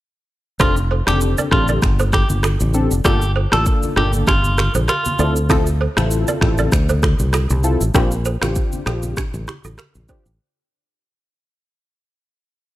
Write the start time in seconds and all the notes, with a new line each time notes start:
0.60 F1 C4 D4 F4 G4 A4, finger snap, kick, cross-stick, low conga, shaker
0.77 shaker
0.91 A4 C5
1.07 F1 C4 D4 G4 A4, finger snap, cross-stick, high conga, shaker
1.21 shaker
1.38 A#4 D5, high conga, shaker
1.51 A1 C4 D4 F4 G4 A4, finger snap, kick, cross-stick, low conga
1.68 A#4 D5, high conga, shaker
1.82 G1, finger snap, kick, cross-stick, low conga, shaker
1.99 A4 C5, high conga, shaker
2.13 F4 G4 A4, finger snap, kick, cross-stick, high conga, shaker
2.30 G1, high conga, shaker
2.43 F4 A4, finger snap, cross-stick, shaker
2.60 A1, high conga, shaker
2.74 C4 D4 G4 A4, shaker
2.91 F1, shaker
3.05 G1 A#3 D4 F4 G4 A4 A#4, finger snap, kick, cross-stick, low conga, shaker
3.22 shaker
3.36 A4 C5
3.52 A1 A#3 D4 F4 G4 A4 A#4, finger snap, cross-stick, high conga, shaker
3.66 kick, shaker
3.83 high conga, shaker
3.96 G1 A#3 D4 F4 G4 A4, finger snap, cross-stick, low conga
4.13 high conga, shaker
4.27 G1 D4 F4 G4, finger snap, kick, cross-stick, low conga, shaker
4.44 high conga, shaker
4.58 G4 A#4, finger snap, cross-stick, high conga, shaker
4.75 A#1 A4 C5, high conga, shaker
4.88 F4 G4 A#4, finger snap, cross-stick, shaker
5.05 high conga, shaker
5.19 D2 C4 E4 F4 A4 D5, shaker
5.36 shaker
5.49 C4 E4 F4 A4, finger snap, kick, cross-stick, low conga, shaker
5.67 shaker
5.81 A4 C5
5.97 A1 C4 E4 F4 A4, finger snap, cross-stick, high conga, shaker
6.11 shaker
6.28 A#4 D5, high conga, shaker
6.41 A1 C4 E4 F4 A4, finger snap, kick, cross-stick, low conga
6.58 A#4 D5, high conga, shaker
6.72 D2, finger snap, kick, cross-stick, low conga, shaker
6.89 A4 C5, high conga, shaker
7.03 F4 A4, finger snap, kick, cross-stick, high conga, shaker
7.19 C2, high conga, shaker
7.33 F4 A4, finger snap, cross-stick, shaker
7.50 C2, high conga, shaker
7.64 C4 E4 F4 A4, shaker
7.81 A1, shaker
7.94 A#1 C4 D4 F4 G4 A#4, finger snap, kick, cross-stick, low conga, shaker
8.11 shaker
8.25 A4 C5, shaker
8.42 A1 C4 D4 F4 G4 A#4, finger snap, cross-stick, high conga, shaker
8.56 kick, shaker
8.72 high conga, shaker
8.86 A#1 C4 D4 F4 G4 A4, finger snap, cross-stick, low conga, shaker
9.03 high conga, shaker
9.17 D4 G4, finger snap, kick, cross-stick, low conga, shaker
9.34 A1, high conga, shaker
9.48 E4 G4, finger snap, cross-stick, high conga, shaker
9.64 A1 F4 A4, high conga, shaker
9.78 G4 A#4, finger snap, cross-stick, shaker
9.95 A#1, high conga, shaker
10.09 C4 D4 F4 G4 A4 C5, kick, shaker
10.26 A1, shaker